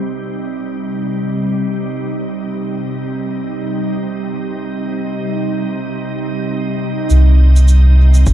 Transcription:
Already playing: C3 G3 D#4
7.10 C2 C3, shaker
7.28 G3
7.56 shaker
7.68 shaker
8.14 shaker
8.27 G1, kick, shaker

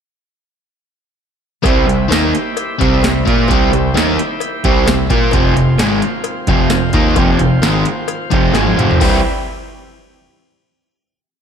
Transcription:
1.63 C2 C3 G3 C4 E4 G4 C5 E5, kick, closed hi-hat, cowbell
1.86 C2 C3 G3, closed hi-hat
2.08 D#2 D#3 A#3 D#4, snare, closed hi-hat, tambourine, cowbell
2.35 closed hi-hat
2.57 closed hi-hat, cowbell
2.79 C2 C3 G3 C4, kick, closed hi-hat
3.02 C2 C3 G3, snare, closed hi-hat, tambourine, cowbell
3.25 A#2 A#3 F4 A#4, kick, closed hi-hat
3.48 C2 C3 G3 C4, kick, closed hi-hat, cowbell
3.71 C2 C3 G3, closed hi-hat
3.94 D#2 D#3 A#3 D#4, snare, closed hi-hat, tambourine, cowbell
4.19 closed hi-hat
4.40 closed hi-hat, cowbell
4.64 C2 C3 G3 C4, kick, closed hi-hat
4.86 C2 C3 G3, snare, closed hi-hat, tambourine, cowbell
5.10 A#2 A#3 F4 A#4, kick, closed hi-hat
5.31 F1 F2 C3 F3 C4 F4 C5 F5, kick, closed hi-hat, cowbell
5.56 F1 F2 C3, closed hi-hat
5.78 G#1 G#2 D#3 G#3, snare, closed hi-hat, tambourine, cowbell
6.02 closed hi-hat
6.24 closed hi-hat, cowbell
6.47 F1 F2 C3 F3, kick, closed hi-hat
6.70 F1 F2 C3, snare, closed hi-hat, tambourine, cowbell
6.93 D#2 D#3 A#3 D#4, kick, closed hi-hat
7.16 F1 F2 C3 F3, kick, closed hi-hat, cowbell
7.39 F1 F2 C3, closed hi-hat
7.62 G#1 G#2 D#3 G#3, snare, closed hi-hat, tambourine, cowbell
7.85 closed hi-hat
8.08 closed hi-hat, cowbell
8.30 F1 F2 C3 F3, kick, closed hi-hat
8.53 G#1 G#2 D#3 G#3, snare, closed hi-hat, cowbell
8.67 high tom
8.76 F1 F2 C3 F3, closed hi-hat, mid tom
8.91 floor tom
9.00 C2 C3 E3 G3 C4 E4 G4 C5 E5, kick, crash, cowbell

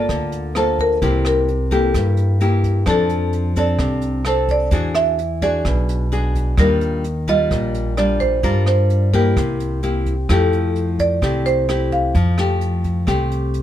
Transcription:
Already playing: A#3 F4 A4 D5
0.09 D2 D3, kick, cross-stick, closed hi-hat
0.32 closed hi-hat
0.55 A#3 F4 A4 C5, cross-stick, closed hi-hat
0.79 A#4, kick, closed hi-hat
1.02 C2 C3 A#3 E4 G4, kick, closed hi-hat
1.25 A#4, cross-stick, closed hi-hat
1.48 closed hi-hat
1.71 A#3 E4 G4 A4, kick, closed hi-hat
1.94 G2, kick, cross-stick, closed hi-hat
2.17 closed hi-hat
2.40 A#3 E4 G4, closed hi-hat
2.64 kick, closed hi-hat
2.86 F2 F3 C4 D4 A4, kick, cross-stick, closed hi-hat
3.09 closed hi-hat
3.33 closed hi-hat
3.56 C4 D4 A4 D5, kick, closed hi-hat
3.79 C2 C3, kick, cross-stick, closed hi-hat
4.01 closed hi-hat
4.25 C4 D4 A4 C5, cross-stick, closed hi-hat
4.48 D5, kick, closed hi-hat
4.71 E2 E3 D4 F#4 G#4, kick, closed hi-hat
4.95 E5, cross-stick, closed hi-hat
5.18 closed hi-hat
5.42 D4 F#4 G#4 D5, kick, closed hi-hat
5.65 B1 B2, kick, cross-stick, closed hi-hat
5.89 closed hi-hat
6.12 D4 F#4 G#4, closed hi-hat
6.35 kick, closed hi-hat
6.57 D#2 D#3 G3 D4 F4 A#4, kick, cross-stick, closed hi-hat
6.81 closed hi-hat
7.04 closed hi-hat
7.27 G3 F4 D#5, kick, closed hi-hat
7.51 A#1 A#2, kick, cross-stick, closed hi-hat
7.74 closed hi-hat
7.97 G3 D4 F4 D5, cross-stick, closed hi-hat
8.20 C5, kick, closed hi-hat
8.43 G2 G3 D4 F4 A#4, kick, closed hi-hat
8.66 C5, cross-stick, closed hi-hat
8.90 closed hi-hat
9.13 A#3 E4 G4 A#4, kick, closed hi-hat
9.36 C2 C3, kick, cross-stick, closed hi-hat
9.60 closed hi-hat
9.83 A#3 E4 G4, closed hi-hat
10.06 kick, closed hi-hat
10.29 F2 F3 A3 E4 G4 A4, kick, cross-stick, closed hi-hat
10.53 closed hi-hat
10.75 closed hi-hat
10.99 D5, kick, closed hi-hat
11.22 C2 C3 A3 E4 G4, kick, cross-stick, closed hi-hat
11.46 C5, closed hi-hat
11.69 A3 E4 G4, cross-stick, closed hi-hat
11.92 F5, kick, closed hi-hat
12.15 F2 F3, kick, closed hi-hat
12.38 A3 G4, cross-stick, closed hi-hat
12.61 closed hi-hat
12.84 kick, closed hi-hat
13.07 C2 C3 A3 G4, kick, cross-stick, closed hi-hat
13.31 closed hi-hat
13.54 closed hi-hat

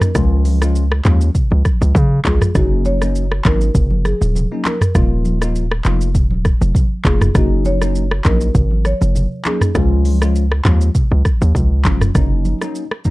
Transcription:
Already playing: A#4
0.01 cross-stick, mid tom, shaker
0.15 C#2 F3 G#3 C#4 F4, kick, cross-stick, low conga, shaker
0.45 open hi-hat, high conga, shaker
0.61 F3 G#3 C#4 F4, cross-stick, shaker
0.75 shaker
0.92 cross-stick
1.05 D#2 F3 G#3 C#4 F4, clap, mid tom, high conga, shaker
1.21 shaker
1.35 kick, low conga, shaker
1.51 C#2, high conga
1.65 kick, cross-stick, high conga, shaker
1.81 C#2, high conga, shaker
1.95 C#3, kick, high conga, low conga, shaker
2.25 C#2 F3 G#3 C#4 F4 G#4, kick, clap, high conga, shaker
2.41 cross-stick, mid tom, shaker
2.55 F#1 F#3 A#3 C#4 D#4 F#4, kick, cross-stick, low conga, shaker
2.85 C#5, high conga, shaker
3.01 F#3 A#3 C#4 D#4, cross-stick, shaker
3.15 shaker
3.32 cross-stick
3.45 G#1 F#3 A#3 C#4 D#4 A#4, kick, clap, high conga, shaker
3.61 shaker
3.75 F#1, kick, low conga, shaker
3.91 high conga
4.05 G#4, cross-stick, high conga, shaker
4.21 D#1, high conga, shaker
4.35 high conga, low conga, shaker
4.51 F#3 A#3 C#4 D#4
4.65 A#4, clap, high conga, shaker
4.81 cross-stick, mid tom, shaker
4.95 D#1 F3 A#3 D#4 F4, kick, cross-stick, low conga, shaker
5.25 high conga, shaker
5.41 F3 A#3 D#4 F4, cross-stick, shaker
5.55 shaker
5.71 cross-stick
5.85 F1 F3 A#3 D#4 F4, clap, high conga, shaker
6.01 shaker
6.15 D#1, kick, low conga, shaker
6.31 high conga
6.45 kick, cross-stick, high conga, shaker
6.61 F1, high conga, shaker
6.75 kick, high conga, low conga, shaker
7.05 F1 F3 A#3 D#4 F4 G#4, kick, clap, high conga, shaker
7.21 cross-stick, mid tom, shaker
7.34 F#1 F#3 A#3 C#4 D#4 F#4, kick, cross-stick, low conga, shaker
7.65 C#5, high conga, shaker
7.81 F#3 A#3 C#4 D#4, cross-stick, shaker
7.95 shaker
8.11 cross-stick
8.24 A#1 F#3 A#3 C#4 D#4 A#4, kick, clap, high conga, shaker
8.41 shaker
8.55 G#1, kick, low conga, shaker
8.71 high conga
8.85 C#5, cross-stick, high conga, shaker
9.01 F#1, high conga, shaker
9.15 high conga, low conga, shaker
9.45 F#3 A#3 C#4 D#4 G#4, clap, high conga, shaker
9.61 cross-stick, mid tom, shaker
9.75 C#2 F3 G#3 C#4 F4, kick, cross-stick, low conga, shaker
10.05 open hi-hat, high conga, shaker
10.21 F3 G#3 C#4 F4, cross-stick, shaker
10.35 shaker
10.52 cross-stick
10.65 D#2 F3 G#3 C#4 F4, clap, mid tom, high conga, shaker
10.81 shaker
10.95 kick, low conga, shaker
11.11 C#2, high conga
11.25 kick, cross-stick, high conga, shaker
11.41 D#2, high conga, shaker
11.55 C#2, kick, high conga, low conga, shaker
11.85 F1 F3 G#3 C#4 F4, kick, clap, high conga, shaker
12.01 cross-stick, mid tom, shaker
12.15 F#1 F#3 A#3 C#4 D#4, kick, cross-stick, low conga, shaker
12.45 high conga, shaker
12.61 F#3 A#3 C#4 D#4, cross-stick, shaker
12.75 shaker
12.91 cross-stick
13.04 F#3 A#3 C#4 D#4, kick, high conga, shaker

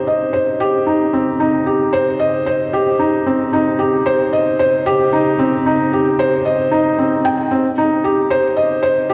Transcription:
Already playing: D#4 G4 C5
0.07 D#5
0.33 C5
0.60 G4
0.87 D#4
1.13 C4
1.40 D#4
1.66 G4
1.93 C5
2.19 D#5
2.46 C5
2.73 G4
2.99 D#4
3.26 C4
3.53 D#4
3.79 G4
4.06 C5
4.33 D#5
4.59 C5
4.86 G4
5.13 D#4
5.39 C4
5.66 D#4
5.93 G4
6.19 C5
6.45 D#5
6.71 D#4
6.99 C4
7.25 G5
7.51 C4
7.78 D#4
8.04 G4
8.30 C5
8.56 D#5
8.83 C5
9.10 G4

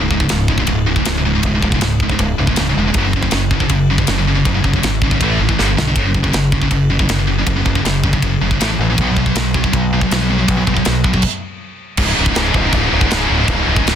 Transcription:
Already playing: C#1
0.02 C#2 G#2
0.11 C#2 G#2, kick
0.20 C#2 G#2, kick
0.29 C#1 C#2 G#2, snare, ride bell
0.48 C#2 G#2, kick
0.58 C#2 G#2, kick
0.67 C#1 C#2 G#2, kick, ride bell
0.86 C#2 G#2
0.96 C#2 G#2, kick
1.05 C#1 C#2 G#2, snare, ride bell
1.18 C#2 G#2
1.25 C#2 G#2
1.35 C#2 G#2
1.43 C#1 C#2 G#2, kick, ride bell
1.55 C#2 G#2
1.62 C#1 C#2 G#2, kick
1.72 C#2 G#2, kick
1.81 C#1 C#2 G#2, snare, ride bell
2.00 C#2 G#2, kick
2.10 C#2 G#2, kick
2.19 C#1 C#2 G#2, kick, ride bell
2.38 C#1 C#2 G#2
2.47 C#2 G#2, kick
2.56 C#1 C#2 G#2, snare, ride bell
2.69 C#2 G#2
2.76 E1 C#2 G#2
2.87 C#2 G#2
2.94 F#1 F#2 C#3 F#3, kick, ride bell
3.06 F#2 C#3
3.13 F#2 C#3, kick
3.22 F#2 C#3, kick
3.31 F#1 F#2 C#3, snare, ride bell
3.51 F#2 C#3, kick
3.60 F#2 C#3, kick
3.69 F#1 F#2 C#3, kick, ride bell
3.90 F#2 C#3
3.98 F#2 C#3, kick
4.07 F#1 F#2 C#3, snare, ride bell
4.18 F#2 C#3
4.28 F#2 C#3
4.35 F#2 C#3
4.45 F#1 F#2 C#3, kick, ride bell
4.55 F#2 C#3
4.64 F#1 F#2 C#3, kick
4.73 F#2 C#3, kick
4.83 G#1 F#2 C#3, snare, ride bell
5.02 F#2 C#3, kick
5.11 F#2 C#3, kick
5.21 A1 A2 E3 A3, kick, ride bell
5.39 G#1 A2 E3
5.49 A2 E3, kick
5.59 G1 G2 D3 G3, snare
5.68 G2 D3
5.77 B1 G2 D3, snare
5.88 G2 D3
5.96 F#1 F#2 C#3 F#3, kick, ride bell
6.05 F#2 C#3
6.14 F#2 C#3, kick
6.23 F#2 C#3, kick
6.32 F#1 F#2 C#3, snare, ride bell
6.52 F#2 C#3, kick
6.62 F#2 C#3, kick
6.71 F#1 F#2 C#3, kick, ride bell
6.90 F#2 C#3
6.99 F#2 C#3, kick
7.09 F#1 F#2 C#3, snare, ride bell
7.19 F#2 C#3
7.27 F#2 C#3
7.39 F#2 C#3
7.47 F#1 F#2 C#3, kick, ride bell
7.56 F#2 C#3
7.65 F#1 F#2 C#3, kick
7.75 F#2 C#3, kick
7.84 F#1 F#2 C#3, snare, ride bell
8.04 F#2 C#3, kick
8.13 F#2 C#3, kick
8.22 F#1 F#2 C#3, kick, ride bell
8.41 F#1 F#2 C#3
8.51 F#2 C#3, kick
8.59 A1 A2 E3 A3, snare, ride bell
8.70 A2 E3
8.79 A1 A2 E3
8.90 A2 E3
8.98 B1 B2 F#3 B3, kick, ride bell
9.09 B2 F#3
9.17 B2 F#3, kick
9.26 B2 F#3, kick
9.35 B1 B2 F#3, snare, ride bell
9.54 B2 F#3, kick
9.64 B2 F#3, kick
9.73 B1 B2 F#3, kick, ride bell
9.93 B2 F#3
10.01 B2 F#3, kick
10.11 B1 B2 F#3, snare, ride bell
10.21 B2 F#3
10.30 B2 F#3
10.38 B2 F#3
10.48 B1 B2 F#3, kick, ride bell
10.57 B2 F#3
10.67 B1 B2 F#3, kick
10.74 B2 F#3, kick
10.85 B1 B2 F#3, snare, ride bell
11.04 B2 F#3, kick
11.13 B2 F#3, kick
11.22 kick, crash
11.97 C#1 C#2 G#2, kick, crash, china
12.06 C#2 G#2
12.14 C#2 G#2
12.18 C#1 C#2 G#2
12.26 C#2, kick
12.30 G#2
12.35 C#1 C#2 G#2, snare, china
12.44 C#2 G#2
12.52 C#1 C#2 G#2, kick
12.60 C#2 G#2
12.68 C#2 G#2
12.73 C#1 G#2, kick, china
12.77 C#2
12.84 C#2 G#2
12.91 C#1 C#2 G#2
13.00 C#2 G#2, kick
13.07 C#2 G#2, china
13.11 C#1 C#2, snare
13.16 G#2
13.22 C#2 G#2
13.29 C#1 C#2 G#2
13.38 C#2 G#2
13.47 C#1 C#2 G#2, kick, china
13.55 C#2 G#2
13.63 C#1 C#2 G#2
13.71 C#2 G#2
13.76 C#2 G#2, kick
13.85 C#1 C#2 G#2, snare, china

